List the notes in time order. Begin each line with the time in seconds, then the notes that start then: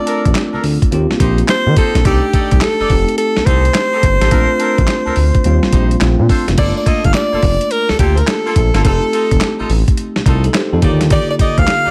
Already playing: A3 C4 D4 F4 D5
0.06 D4 A4 A#4, closed hi-hat
0.25 A1, kick, closed hi-hat
0.35 snare, clap, closed hi-hat
0.53 D2 D4 A4 A#4
0.63 D2, open hi-hat
0.82 kick, closed hi-hat
0.91 D#2 A#3 C4 F4 G4, closed hi-hat
1.10 A#1, snare
1.20 A#1 D#4 G4 C5, kick, closed hi-hat
1.38 closed hi-hat
1.48 C5, snare, clap, closed hi-hat
1.66 D#3
1.76 D#4 G4 A4 C5, kick, closed hi-hat
1.95 A#1, snare, closed hi-hat
2.05 C2 A3 D4 D#4 G4 A4 D5, kick, closed hi-hat
2.33 D#4 A4 D5, kick, closed hi-hat
2.51 C2, kick, closed hi-hat
2.61 A4, snare, clap, closed hi-hat
2.80 F1 D#4 A4 D5
2.89 F1 A3 C4 D#4 G4, kick, open hi-hat
3.08 closed hi-hat
3.18 A4, closed hi-hat
3.37 C2, snare
3.46 C2 D#4 G4 A4 C5, kick, closed hi-hat
3.65 closed hi-hat
3.74 snare, clap, closed hi-hat
3.93 D#4 G4 A4
4.03 G1, kick, closed hi-hat
4.21 A1 D#4 G4 A4, snare, closed hi-hat
4.31 A#1 A3 C4 D4 F4 A4 A#4, kick, closed hi-hat
4.59 D4 A4 A#4, closed hi-hat
4.78 A1, kick, closed hi-hat
4.87 snare, clap, closed hi-hat
5.06 D2 D4 A4 A#4
5.16 D2, open hi-hat
5.35 kick, closed hi-hat
5.44 D#2 G3 A#3 C4 F4, closed hi-hat
5.63 A#1, snare
5.73 A#1 D#4 G4 C5, kick, closed hi-hat
5.91 closed hi-hat
6.01 A#1 A3 C4 D4 F4, snare, clap, closed hi-hat
6.19 A#2
6.29 D4 A4 C5, kick, open hi-hat
6.48 F1, snare, closed hi-hat
6.57 G1 A3 A#3 D4 E4 F4 A4 D5, kick, closed hi-hat, crash
6.66 F4
6.77 D5
6.86 A#3 F4 A4 D#5, kick, closed hi-hat
7.04 G1 F5, kick, closed hi-hat
7.14 D5, snare, clap, closed hi-hat
7.33 F1 A#3 F4 A4
7.43 F1, kick, open hi-hat
7.61 closed hi-hat
7.71 A#4, closed hi-hat
7.89 D2 A4, snare
7.99 D2 A#3 F4 G4 A4, kick, closed hi-hat
8.15 A#4 C5, closed hi-hat
8.27 A4, snare, clap, closed hi-hat
8.46 A#3 F4 A4
8.56 A#1, kick, closed hi-hat
8.74 G1 A#3 F4 A4, snare, closed hi-hat
8.84 F1 A3 C4 D#4 F4 G4 A4, kick, closed hi-hat
9.13 D#4 F4 A4, closed hi-hat
9.31 F1, kick, closed hi-hat
9.41 snare, clap, closed hi-hat
9.59 A1 D#4 F4 A4
9.69 A1, open hi-hat
9.88 kick, closed hi-hat
9.97 closed hi-hat
10.16 C2, snare
10.26 C2 D#4 F4 A4, kick, closed hi-hat
10.44 D#4 A4, closed hi-hat
10.54 G4 C5, snare, clap, closed hi-hat
10.72 F2 D#4 A4
10.82 D#2 D3 A#3 D#4 F4 G4 D5, kick, closed hi-hat
11.01 snare, closed hi-hat
11.10 D#4 G4 D5, kick, closed hi-hat
11.30 D5
11.39 D#4 G4 D5 D#5, kick, closed hi-hat
11.58 D2 F5, kick, closed hi-hat
11.67 snare, clap, closed hi-hat
11.85 D2 D#4 G4 D5